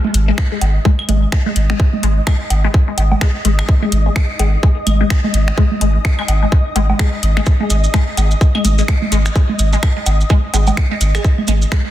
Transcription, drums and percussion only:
0.04 low conga medium
0.14 closed hi-hat medium
0.38 finger snap medium
0.38 kick loud
0.61 closed hi-hat medium
0.61 low woodblock medium
0.85 kick loud
0.99 claves medium
1.09 closed hi-hat medium
1.09 low conga loud
1.32 finger snap medium
1.32 kick loud
1.32 closed hi-hat soft
1.46 low conga medium
1.56 closed hi-hat medium
1.70 finger snap medium
1.80 kick loud
1.93 low conga loud
2.03 closed hi-hat loud
2.27 finger snap medium
2.27 kick loud
2.27 claves medium
2.50 closed hi-hat medium
2.50 low woodblock medium
2.74 kick loud
2.98 closed hi-hat medium
2.98 low woodblock medium
3.12 low conga medium
3.12 low woodblock medium
3.21 finger snap medium
3.21 kick loud
3.21 closed hi-hat soft
3.45 closed hi-hat medium
3.59 finger snap medium
3.59 claves medium
3.69 kick loud
3.82 low conga loud
3.92 closed hi-hat medium
4.16 finger snap medium
4.16 kick loud
4.39 closed hi-hat medium
4.39 low woodblock medium
4.63 kick loud
4.87 closed hi-hat medium
4.87 low conga loud
4.87 claves medium
5.10 finger snap medium
5.10 kick loud
5.10 closed hi-hat soft
5.24 low conga loud
5.34 closed hi-hat loud
5.48 finger snap medium
5.58 kick loud
5.72 low conga medium
5.81 closed hi-hat loud
6.05 finger snap medium
6.05 kick loud
6.19 claves medium
6.28 closed hi-hat medium
6.28 low woodblock medium
6.52 kick loud
6.76 closed hi-hat medium
6.76 low woodblock medium
6.90 low conga medium
6.90 low woodblock medium
6.99 finger snap medium
6.99 kick loud
6.99 closed hi-hat soft
7.23 closed hi-hat medium
7.37 finger snap medium
7.46 kick loud
7.46 maracas soft
7.60 low conga medium
7.70 closed hi-hat medium
7.70 maracas medium
7.84 maracas soft
7.94 finger snap medium
7.94 kick loud
7.94 maracas soft
8.17 closed hi-hat medium
8.17 low woodblock medium
8.17 maracas medium
8.31 maracas medium
8.41 kick loud
8.41 maracas soft
8.55 claves medium
8.65 closed hi-hat medium
8.65 low conga medium
8.65 maracas medium
8.78 maracas medium
8.88 finger snap medium
8.88 kick loud
8.88 closed hi-hat soft
8.88 maracas soft
9.02 low conga medium
9.12 closed hi-hat medium
9.12 maracas medium
9.25 finger snap medium
9.25 maracas soft
9.36 kick loud
9.36 maracas soft
9.49 low conga medium
9.59 closed hi-hat medium
9.59 maracas medium
9.73 maracas medium
9.83 finger snap medium
9.83 kick loud
9.83 claves medium
9.83 maracas soft
10.06 closed hi-hat medium
10.06 low woodblock medium
10.06 maracas medium
10.21 maracas soft
10.30 kick loud
10.30 maracas soft
10.54 closed hi-hat medium
10.54 low woodblock medium
10.54 maracas medium
10.67 low conga medium
10.67 low woodblock medium
10.67 maracas medium
10.77 finger snap medium
10.77 kick loud
10.77 closed hi-hat soft
10.77 maracas soft
11.01 closed hi-hat medium
11.01 maracas loud
11.15 finger snap medium
11.15 claves medium
11.15 maracas soft
11.24 kick loud
11.24 maracas soft
11.38 low conga medium
11.47 closed hi-hat medium
11.47 maracas medium
11.62 maracas soft
11.72 finger snap medium
11.72 kick loud
11.72 maracas soft

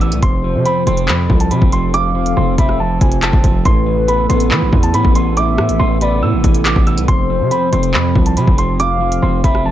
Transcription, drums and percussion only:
0.01 closed hi-hat soft
0.12 closed hi-hat medium
0.23 kick loud
0.23 closed hi-hat medium
0.66 closed hi-hat medium
0.87 closed hi-hat medium
0.97 closed hi-hat medium
1.08 clap loud
1.30 kick medium
1.40 closed hi-hat medium
1.51 closed hi-hat medium
1.62 kick loud
1.72 closed hi-hat medium
1.94 closed hi-hat medium
2.26 closed hi-hat medium
2.58 kick loud
2.58 closed hi-hat medium
2.69 cross-stick medium
3.01 kick loud
3.01 closed hi-hat medium
3.12 closed hi-hat medium
3.22 clap loud
3.22 closed hi-hat medium
3.33 kick loud
3.44 kick medium
3.44 closed hi-hat medium
3.65 kick loud
3.65 closed hi-hat medium
4.08 closed hi-hat medium
4.30 closed hi-hat medium
4.40 closed hi-hat medium
4.51 clap loud
4.73 kick loud
4.83 closed hi-hat medium
4.94 closed hi-hat medium
5.05 kick loud
5.15 closed hi-hat medium
5.37 closed hi-hat medium
5.58 cross-stick loud
5.69 closed hi-hat medium
6.01 closed hi-hat medium
6.44 kick medium
6.44 closed hi-hat medium
6.55 closed hi-hat medium
6.65 clap loud
6.65 closed hi-hat medium
6.76 kick loud
6.87 closed hi-hat soft
6.98 closed hi-hat medium
7.08 kick loud
7.08 closed hi-hat medium
7.51 closed hi-hat medium
7.73 closed hi-hat medium
7.83 closed hi-hat medium
7.94 clap loud
8.15 kick medium
8.26 closed hi-hat medium
8.37 closed hi-hat medium
8.47 kick loud
8.58 closed hi-hat medium
8.80 closed hi-hat medium
9.12 closed hi-hat medium
9.44 kick loud
9.44 closed hi-hat medium
9.55 cross-stick medium

